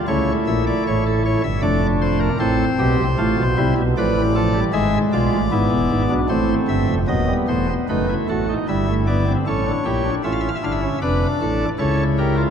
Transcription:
0.08 C#2 C#3 A3 E4 C#5
0.47 A#1 A#2 E5
0.67 D5
0.87 A1 A2 C#5
1.06 A4
1.25 C#5
1.44 G1 G2 E5
1.62 F1 F2 A3 D4 D5
2.01 C5
2.20 A#4
2.39 A1 A2 C4 A4 C5
2.79 B1 B2 G4
2.98 C2 C3
3.18 A1 A2 A3 F4
3.37 B1 B2
3.57 C2 C3 G3 E4
3.77 B1 B2
3.97 A1 A2 F3 B4 D5
4.17 E3
4.35 F3 A4
4.54 G3
4.73 G#1 G#2 G#3 G#4 E5
5.13 B1 B2 F4 D5
5.32 A1 A2
5.52 G#1 G#2 B3 E4
5.71 E1 E2
5.91 G#1 G#2
6.10 B1 B2 D4
6.29 A1 A2 A3 C4 C5
6.68 G1 G2 E5
6.88 F1 F2
7.07 D#1 D#2 F#3 B3 D#5
7.28 G3
7.48 E1 E2 A3 C5
7.68 B3
7.89 F#1 F#2 A3 D#4 B4
8.09 E4
8.29 A1 A2 F#4 A4
8.49 D#4
8.68 G1 G2 G3 E4 E5
8.88 A3
9.07 B3 D5
9.28 C4
9.47 A1 A2 C#4 A4 C#5
9.66 D4
9.85 A#1 A#2 E4 G4
10.05 D4
10.24 A1 A2 C#4 F4 E5
10.32 F5
10.40 E5
10.48 F5
10.55 E5
10.63 G1 G2 D4 E4 F5
10.72 E5
10.82 C#4
11.02 F1 F2 D4 B4 D5
11.41 A1 A2 A4
11.79 C#2 C#3 E4 A4 C#5
12.18 G4 A#4
12.37 F4

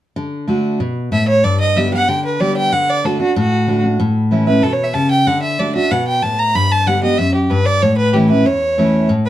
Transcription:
0.16 D3
0.47 D3 A3 D4 F#4
0.80 B2
1.12 A2 E5
1.28 C#5
1.44 G2 D5
1.60 D#5
1.76 D3 G3 B3 G4 E5
1.92 B3 G4 F#5
2.08 D3 G5
2.25 B4
2.40 D3 G3 B3 G4 D5
2.57 G5
2.72 D3 F#5
2.90 D5
3.04 D3 A3 D4 F#4 A4
3.20 D4 F#4
3.36 A2 F#4
3.67 D3 A3 D4 F#4
3.84 D4 F#4
4.00 A2
4.31 E3 A3 C#4 E4
4.47 C#4 E4 B4
4.63 B2 A4
4.73 C#5
4.84 E5
4.94 C#3 A5
5.11 G5
5.27 D3 F#5
5.42 E5
5.59 D3 A3 D4 F#4 D5
5.75 D4 F#4 E5
5.91 B2 F#5
6.07 G5
6.23 A2 A5
6.39 A#5
6.55 G2 B5
6.72 A5
6.86 D3 G3 B3 G4 F#5
7.03 B3 G4 D#5
7.18 F#2 E5
7.35 G4
7.50 G2 B4
7.65 D5
7.82 A2 C#5
7.97 B4
8.13 E3 A3 C#4 E4 G4
8.30 C#4 E4 B4
8.46 E2 C#5
8.78 E3 A3 C#4 E4
9.09 A2

